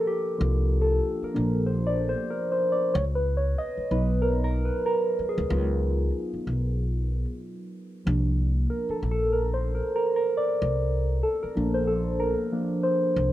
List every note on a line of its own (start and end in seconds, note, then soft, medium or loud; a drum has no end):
0.00 0.38 F3 soft
0.00 0.38 A#3 soft
0.00 0.39 D4 soft
0.00 0.07 G4 medium
0.00 0.82 A4 medium
0.00 1.24 A#4 medium
0.07 0.36 G4 medium
0.38 0.99 C2 loud
0.38 1.33 F3 soft
0.38 1.33 A#3 soft
0.38 1.33 D4 soft
0.38 0.82 F4 medium
0.82 1.20 A4 medium
1.22 1.67 A#4 medium
1.22 muted upright bass stroke soft
1.34 2.13 A#1 medium
1.34 1.62 F3 soft
1.34 1.62 A#3 soft
1.34 1.63 D4 medium
1.66 1.88 C5 medium
1.87 2.09 D5 loud
2.09 2.18 C5 medium
2.30 2.50 A#4 medium
2.52 2.61 C5 medium
2.72 2.94 D5 loud
2.94 3.54 C#2 loud
2.94 3.03 C#5 medium
3.15 3.37 B4 medium
3.37 3.58 C#5 medium
3.58 3.90 D#5 loud
3.78 muted upright bass stroke soft
3.91 4.68 B1 medium
3.91 5.48 F#3 medium
3.91 5.49 B3 medium
3.91 5.49 D#4 medium
3.91 4.23 B4 medium
4.22 4.43 A#4 loud
4.44 4.65 A#4 medium
4.65 4.86 B4 medium
4.86 5.29 A#4 medium
5.19 muted upright bass stroke soft
5.29 5.50 G#4 medium
5.38 5.48 C#2 medium
5.50 6.09 C#2 loud
5.50 8.00 F#3 soft
5.50 8.01 B3 soft
5.50 8.01 D#4 medium
5.50 6.41 F4 medium
6.34 muted upright bass stroke soft
6.47 7.24 B1 medium
8.05 8.65 C2 loud
8.05 8.96 F3 soft
8.05 8.96 A#3 soft
8.05 8.97 D4 soft
8.70 8.91 A#4 medium
8.89 9.10 A4 medium
8.89 muted upright bass stroke soft
9.03 9.79 A#1 medium
9.11 9.21 A4 medium
9.33 9.54 A#4 medium
9.54 9.73 C5 medium
9.75 9.94 A#4 medium
9.96 10.15 A#4 medium
10.16 10.36 A#4 medium
10.37 10.97 D5 medium
10.62 11.20 C2 medium
11.23 11.42 A4 medium
11.43 11.75 A#4 medium
11.43 muted upright bass stroke soft
11.55 12.34 A#1 medium
11.55 12.51 F3 medium
11.55 12.51 A#3 medium
11.55 12.51 D4 medium
11.74 11.86 C5 medium
11.87 12.17 A4 medium
12.20 12.85 A#4 medium
12.52 12.80 F3 soft
12.52 12.80 A#3 soft
12.52 12.80 D4 medium
12.83 13.30 C5 medium
13.16 13.33 C2 medium